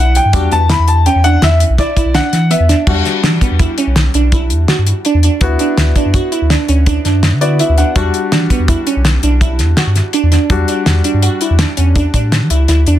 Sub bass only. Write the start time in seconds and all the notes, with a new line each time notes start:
Already playing: B1
0.25 G2
0.33 E2
0.52 E2
0.79 E2
1.15 E2
1.43 E2
1.70 B1
2.05 B1
2.33 E3
2.60 E2
2.87 E2
3.24 E3
3.51 E2
3.87 B1
4.14 B1
4.51 E2
4.79 G2
5.14 E2
5.41 D2
5.78 D2
6.05 F#2
6.42 D2
6.69 D2
7.05 F#2
7.33 D3
7.69 D2
7.96 E2
8.32 E3
8.59 E2
8.96 B1
9.23 B1
9.60 E2
9.87 G2
10.23 E2
10.50 E2
10.87 E2
11.14 G2
11.50 E2
11.78 E2
12.14 A2
12.41 E3
12.50 C#2
12.69 D2
12.87 E2